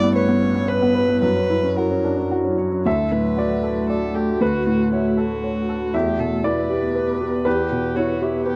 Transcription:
Already playing: grand piano G2 B3 E4, ambient pad G3 E4 B4, violin D5
0.03 grand piano B3
0.15 grand piano B4, violin C#5
0.28 grand piano B3
0.42 grand piano C#4
0.55 grand piano B3
0.68 grand piano B4, violin B4
0.82 grand piano B3
0.95 grand piano B4
1.09 grand piano B3
1.22 grand piano F#2, ambient pad F#3 C#5, violin B4
1.36 grand piano C#4
1.50 grand piano E4
1.63 grand piano C#4
1.77 grand piano F#4, violin A#4
1.91 grand piano C#4
2.05 grand piano D4
2.18 grand piano C#4
2.31 grand piano F#4
2.44 grand piano C#4
2.58 grand piano C#5
2.72 grand piano C#4
2.85 grand piano D2 E5, ambient pad A3 F#4 A4, violin A4
3.12 grand piano A2, violin B4
3.37 grand piano F#4 D5
3.63 grand piano A4
3.89 violin A4, grand piano D5
4.15 violin G4, grand piano A4
4.41 grand piano D2 B4, violin F#4
4.67 grand piano A2, violin F#4
4.92 violin E4, grand piano F#4 C#5
5.17 violin F#4, grand piano A4
5.44 grand piano C#5
5.69 grand piano A4
5.94 grand piano E2 E5, ambient pad B3 G4 B4, violin G4
6.19 grand piano B2, violin A4
6.44 grand piano E4 D5, violin B4
6.70 grand piano G4
6.95 grand piano B4
7.20 grand piano G4
7.45 grand piano E2 B4, violin G4
7.71 grand piano B2
7.96 grand piano E4 C#5, violin F#4
8.22 violin E4, grand piano G4
8.46 violin G4, grand piano B4

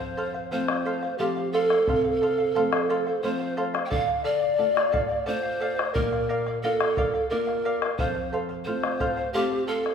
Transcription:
Already playing: nylon-string guitar F2, pan flute C5
0.00 charango C5 F5
0.17 charango A4 C5 F5
0.34 charango C5 F5
0.51 nylon-string guitar F3 A3 C4, charango A4 C5 F5, pan flute C5
0.68 charango C5 F5, bombo rim
0.85 charango A4 C5 F5, bombo rim
1.02 charango C5 F5
1.18 nylon-string guitar F3 A3 C4, pan flute G4, charango A4 C5 F5, bombo rim
1.37 charango C5 F5
1.52 pan flute A4, charango A4 C5 F5
1.70 charango C5 F5, bombo rim
1.87 nylon-string guitar C3, charango A4 C5 F5, bombo low
2.04 charango C5 F5
2.22 charango A4 C5 F5
2.38 charango C5 F5
2.55 nylon-string guitar F3 A3 C4, charango A4 C5 F5
2.73 charango C5 F5, bombo rim
2.90 charango A4 C5 F5, bombo rim
3.07 charango C5 F5
3.22 nylon-string guitar F3 A3 C4, charango A4 C5 F5, pan flute C5, bombo rim
3.40 charango C5 F5
3.57 charango A4 C5 F5
3.74 charango C5 F5, bombo rim
3.85 pan flute G5
3.90 nylon-string guitar D3, charango A4 D5 F5, pan flute F5, bombo low
4.07 charango D5 F5
4.24 charango A4 D5 F5, pan flute D5
4.41 charango D5 F5
4.58 nylon-string guitar A3 D4 F4, charango A4 D5 F5
4.75 charango D5 F5, bombo rim
4.92 charango A4 D5 F5, bombo rim, bombo low
5.09 charango D5 F5
5.26 nylon-string guitar A3 D4 F4, charango A4 D5 F5, pan flute C5, bombo rim
5.43 charango D5 F5
5.60 charango A4 D5 F5
5.76 charango D5 F5, bombo rim
5.94 nylon-string guitar A#2, pan flute A#4, charango A#4 D5 F5, bombo low
6.12 charango D5 F5, bombo rim
6.29 charango A#4 D5 F5
6.46 charango D5 F5, bombo rim
6.62 nylon-string guitar A#3 D4 F4, pan flute A4, charango A#4 D5 F5
6.80 charango D5 F5, bombo rim
6.97 charango A#4 D5 F5, bombo rim, bombo low
7.14 charango D5 F5
7.29 nylon-string guitar A#3 D4 F4, pan flute A#4, charango A#4 D5 F5, bombo rim
7.47 charango D5 F5, bombo rim
7.65 charango A#4 D5 F5
7.82 charango D5 F5, bombo rim
7.97 nylon-string guitar F2, charango A4 C5 F5, pan flute C5, bombo low
8.15 charango C5 F5
8.33 charango A4 C5 F5
8.49 charango C5 F5
8.64 nylon-string guitar A3 C4, charango A4 C5 F5, pan flute C5
8.68 nylon-string guitar F4
8.83 charango C5 F5, bombo rim
9.00 charango A4 C5 F5, bombo rim, bombo low
9.17 charango C5 F5
9.33 nylon-string guitar A3 C4 F4, pan flute G4, charango A4 C5 F5, bombo rim
9.51 charango C5 F5
9.67 pan flute A4, charango A4 C5 F5
9.84 charango C5 F5, bombo rim

